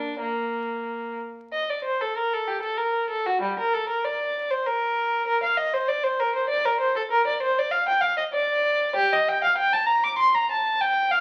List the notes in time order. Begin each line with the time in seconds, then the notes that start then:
Already playing: D4
0.21 A#3
1.52 D#5
1.70 D5
1.84 C5
2.01 A4
2.17 A#4
2.34 A4
2.48 G4
2.62 A4
2.77 A#4
3.09 A4
3.26 F#4
3.42 G3
3.59 A#4
3.74 A4
3.89 A#4
4.04 D5
4.51 C5
4.66 A#4
5.27 A#4
5.43 F5
5.57 D#5
5.74 C5
5.88 D5
6.04 C5
6.20 A#4
6.35 C5
6.49 D5
6.65 A#4
6.80 C5
6.96 A4
7.11 A#4
7.27 D5
7.43 C5
7.58 D5
7.71 F5
7.88 G5
8.01 F5
8.18 D#5
8.33 D5
8.96 G4
9.13 D#5
9.28 G5
9.44 F5
9.58 G5
9.73 A5
9.87 A#5
10.04 D6
10.18 C6
10.35 A#5
10.51 A5
10.81 G5
11.11 F5